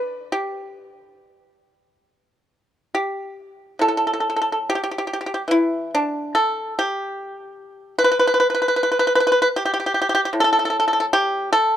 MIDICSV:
0, 0, Header, 1, 2, 480
1, 0, Start_track
1, 0, Tempo, 841515
1, 208, Time_signature, 4, 2, 24, 8
1, 1173, Tempo, 865801
1, 2613, Tempo, 839161
1, 4053, Tempo, 788436
1, 6851, End_track
2, 0, Start_track
2, 0, Title_t, "Pipa"
2, 0, Program_c, 0, 105
2, 0, Note_on_c, 0, 50, 49
2, 0, Note_on_c, 0, 71, 71
2, 177, Note_off_c, 0, 71, 0
2, 184, Note_on_c, 0, 67, 61
2, 678, Note_off_c, 0, 50, 0
2, 1659, Note_off_c, 0, 67, 0
2, 1666, Note_on_c, 0, 67, 60
2, 2122, Note_off_c, 0, 67, 0
2, 2136, Note_on_c, 0, 45, 39
2, 2148, Note_on_c, 0, 69, 73
2, 2179, Note_off_c, 0, 69, 0
2, 2186, Note_on_c, 0, 69, 46
2, 2224, Note_off_c, 0, 69, 0
2, 2235, Note_on_c, 0, 69, 51
2, 2270, Note_off_c, 0, 69, 0
2, 2289, Note_on_c, 0, 69, 41
2, 2318, Note_off_c, 0, 69, 0
2, 2325, Note_on_c, 0, 69, 43
2, 2356, Note_off_c, 0, 69, 0
2, 2363, Note_on_c, 0, 69, 37
2, 2398, Note_off_c, 0, 69, 0
2, 2415, Note_on_c, 0, 69, 44
2, 2445, Note_off_c, 0, 69, 0
2, 2452, Note_on_c, 0, 69, 39
2, 2474, Note_off_c, 0, 69, 0
2, 2481, Note_on_c, 0, 69, 50
2, 2520, Note_off_c, 0, 69, 0
2, 2541, Note_on_c, 0, 69, 44
2, 2572, Note_off_c, 0, 69, 0
2, 2637, Note_on_c, 0, 67, 73
2, 2662, Note_off_c, 0, 67, 0
2, 2669, Note_on_c, 0, 67, 45
2, 2704, Note_off_c, 0, 67, 0
2, 2717, Note_on_c, 0, 67, 51
2, 2750, Note_off_c, 0, 67, 0
2, 2762, Note_on_c, 0, 67, 42
2, 2794, Note_off_c, 0, 67, 0
2, 2801, Note_on_c, 0, 67, 51
2, 2836, Note_off_c, 0, 67, 0
2, 2852, Note_on_c, 0, 67, 43
2, 2881, Note_off_c, 0, 67, 0
2, 2888, Note_on_c, 0, 67, 49
2, 2923, Note_off_c, 0, 67, 0
2, 2930, Note_on_c, 0, 67, 38
2, 2955, Note_off_c, 0, 67, 0
2, 2962, Note_on_c, 0, 67, 47
2, 2999, Note_off_c, 0, 67, 0
2, 3006, Note_on_c, 0, 67, 44
2, 3047, Note_off_c, 0, 67, 0
2, 3084, Note_on_c, 0, 52, 43
2, 3103, Note_on_c, 0, 64, 76
2, 3325, Note_off_c, 0, 64, 0
2, 3352, Note_on_c, 0, 62, 67
2, 3570, Note_off_c, 0, 62, 0
2, 3578, Note_off_c, 0, 45, 0
2, 3582, Note_on_c, 0, 69, 70
2, 3803, Note_off_c, 0, 69, 0
2, 3833, Note_on_c, 0, 67, 68
2, 4524, Note_off_c, 0, 67, 0
2, 4533, Note_off_c, 0, 52, 0
2, 4548, Note_on_c, 0, 71, 79
2, 4577, Note_off_c, 0, 71, 0
2, 4584, Note_on_c, 0, 71, 63
2, 4621, Note_off_c, 0, 71, 0
2, 4628, Note_on_c, 0, 71, 64
2, 4668, Note_off_c, 0, 71, 0
2, 4676, Note_on_c, 0, 71, 60
2, 4713, Note_off_c, 0, 71, 0
2, 4724, Note_on_c, 0, 71, 67
2, 4757, Note_off_c, 0, 71, 0
2, 4764, Note_on_c, 0, 71, 53
2, 4793, Note_off_c, 0, 71, 0
2, 4800, Note_on_c, 0, 71, 59
2, 4840, Note_off_c, 0, 71, 0
2, 4861, Note_on_c, 0, 71, 51
2, 4882, Note_off_c, 0, 71, 0
2, 4889, Note_on_c, 0, 71, 58
2, 4926, Note_off_c, 0, 71, 0
2, 4933, Note_on_c, 0, 71, 54
2, 4965, Note_off_c, 0, 71, 0
2, 4972, Note_on_c, 0, 71, 53
2, 5012, Note_off_c, 0, 71, 0
2, 5022, Note_on_c, 0, 71, 52
2, 5056, Note_off_c, 0, 71, 0
2, 5063, Note_on_c, 0, 71, 62
2, 5101, Note_off_c, 0, 71, 0
2, 5115, Note_on_c, 0, 71, 50
2, 5149, Note_off_c, 0, 71, 0
2, 5162, Note_on_c, 0, 71, 62
2, 5194, Note_off_c, 0, 71, 0
2, 5209, Note_on_c, 0, 71, 56
2, 5240, Note_off_c, 0, 71, 0
2, 5260, Note_on_c, 0, 71, 68
2, 5283, Note_off_c, 0, 71, 0
2, 5290, Note_on_c, 0, 71, 62
2, 5323, Note_off_c, 0, 71, 0
2, 5330, Note_on_c, 0, 71, 72
2, 5353, Note_off_c, 0, 71, 0
2, 5360, Note_on_c, 0, 71, 59
2, 5401, Note_off_c, 0, 71, 0
2, 5421, Note_on_c, 0, 71, 73
2, 5454, Note_off_c, 0, 71, 0
2, 5509, Note_on_c, 0, 67, 69
2, 5547, Note_off_c, 0, 67, 0
2, 5565, Note_on_c, 0, 67, 54
2, 5597, Note_off_c, 0, 67, 0
2, 5614, Note_on_c, 0, 67, 57
2, 5643, Note_off_c, 0, 67, 0
2, 5651, Note_on_c, 0, 67, 45
2, 5683, Note_off_c, 0, 67, 0
2, 5692, Note_on_c, 0, 67, 49
2, 5725, Note_off_c, 0, 67, 0
2, 5741, Note_on_c, 0, 67, 44
2, 5771, Note_off_c, 0, 67, 0
2, 5785, Note_on_c, 0, 67, 56
2, 5814, Note_off_c, 0, 67, 0
2, 5832, Note_on_c, 0, 67, 52
2, 5857, Note_off_c, 0, 67, 0
2, 5864, Note_on_c, 0, 67, 64
2, 5896, Note_off_c, 0, 67, 0
2, 5929, Note_on_c, 0, 67, 61
2, 5950, Note_off_c, 0, 67, 0
2, 5975, Note_on_c, 0, 45, 54
2, 6021, Note_on_c, 0, 69, 90
2, 6037, Note_off_c, 0, 69, 0
2, 6045, Note_on_c, 0, 69, 59
2, 6073, Note_off_c, 0, 69, 0
2, 6096, Note_on_c, 0, 69, 63
2, 6121, Note_off_c, 0, 69, 0
2, 6135, Note_on_c, 0, 69, 49
2, 6161, Note_off_c, 0, 69, 0
2, 6172, Note_on_c, 0, 69, 55
2, 6194, Note_off_c, 0, 69, 0
2, 6201, Note_on_c, 0, 69, 54
2, 6236, Note_off_c, 0, 69, 0
2, 6260, Note_on_c, 0, 69, 59
2, 6288, Note_off_c, 0, 69, 0
2, 6309, Note_on_c, 0, 69, 56
2, 6334, Note_off_c, 0, 69, 0
2, 6341, Note_on_c, 0, 69, 56
2, 6371, Note_off_c, 0, 69, 0
2, 6384, Note_on_c, 0, 69, 62
2, 6414, Note_off_c, 0, 69, 0
2, 6464, Note_on_c, 0, 67, 85
2, 6682, Note_off_c, 0, 67, 0
2, 6704, Note_on_c, 0, 69, 86
2, 6851, Note_off_c, 0, 45, 0
2, 6851, Note_off_c, 0, 69, 0
2, 6851, End_track
0, 0, End_of_file